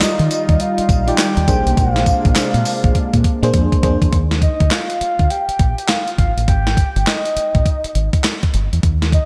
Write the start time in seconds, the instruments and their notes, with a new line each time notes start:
Already playing: analog synth pad D#3 G3 D#4 F4, fm electric piano D5, soft synth lead D#5
0.00 fm electric piano G3 D#4 F4 D#5, snare, clap, closed hi-hat, tambourine
0.19 fingered electric bass D#3, closed hi-hat
0.31 closed hi-hat, tambourine
0.49 fingered electric bass D#2, kick, closed hi-hat
0.60 soft synth lead F5, closed hi-hat
0.78 muted fingered electric bass stroke, closed hi-hat
0.89 fingered electric bass A#1, kick, closed hi-hat, tambourine
1.07 fm electric piano G3 D#4 F4 D5, soft synth lead G5, closed hi-hat
1.18 soft synth lead G5, snare, clap, closed hi-hat, tambourine
1.37 fingered electric bass D#2, closed hi-hat
1.48 fingered electric bass A#1, analog synth pad C3 G#3 A#3 D4, fm electric piano A#3 D4 G#4 C5, kick, closed hi-hat, tambourine
1.66 fingered electric bass B1, closed hi-hat
1.77 fingered electric bass A#1, soft synth lead F5, kick, closed hi-hat, tambourine
1.96 snare, closed hi-hat
2.06 kick, closed hi-hat, tambourine
2.25 fingered electric bass A#1, kick, closed hi-hat
2.35 fm electric piano A#3 D4 G#4 C5, snare, clap, closed hi-hat, tambourine
2.54 fingered electric bass A#2, closed hi-hat
2.65 open hi-hat, tambourine
2.84 fingered electric bass A#1, kick, closed hi-hat
2.95 kick, closed hi-hat
3.14 fingered electric bass A#2, kick, closed hi-hat
3.24 kick, closed hi-hat
3.43 fingered electric bass A#2, fm electric piano A#3 D4 G#4 C5, closed hi-hat
3.54 fingered electric bass F2, kick, closed hi-hat
3.72 kick, closed hi-hat
3.83 fingered electric bass F2, fm electric piano A#3 D4 G#4 C5, kick, closed hi-hat
4.02 fingered electric bass E2, kick, closed hi-hat
4.13 fingered electric bass D#2, kick, closed hi-hat
4.31 snare, closed hi-hat
4.42 soft synth lead D#5, kick, closed hi-hat
4.60 fingered electric bass D2, kick, closed hi-hat
4.71 soft synth lead F5, snare, clap, closed hi-hat
4.90 closed hi-hat
5.01 muted fingered electric bass stroke, closed hi-hat
5.19 fingered electric bass D2, kick, closed hi-hat
5.30 soft synth lead G5, closed hi-hat
5.48 muted fingered electric bass stroke, closed hi-hat
5.59 fingered electric bass A#1, kick, closed hi-hat
5.78 closed hi-hat
5.88 soft synth lead F5, snare, clap, closed hi-hat
6.08 closed hi-hat
6.18 fingered electric bass G#1, soft synth lead F5, kick, closed hi-hat
6.37 fingered electric bass A1, closed hi-hat
6.47 fingered electric bass G#1, soft synth lead G5, kick, closed hi-hat
6.67 snare, closed hi-hat
6.77 kick, closed hi-hat
6.96 fingered electric bass G1, closed hi-hat
7.07 soft synth lead D#5, snare, clap, closed hi-hat
7.25 closed hi-hat
7.36 muted fingered electric bass stroke, closed hi-hat
7.55 fingered electric bass A#1, kick, closed hi-hat
7.66 kick, closed hi-hat
7.84 muted fingered electric bass stroke, closed hi-hat
7.95 fingered electric bass G#1, closed hi-hat
8.13 kick, closed hi-hat
8.24 snare, clap, closed hi-hat
8.43 kick, closed hi-hat
8.54 fingered electric bass G1, closed hi-hat
8.73 fingered electric bass E2, closed hi-hat
8.83 fingered electric bass D#2, kick, closed hi-hat
9.02 snare, closed hi-hat
9.12 soft synth lead D#5, kick, closed hi-hat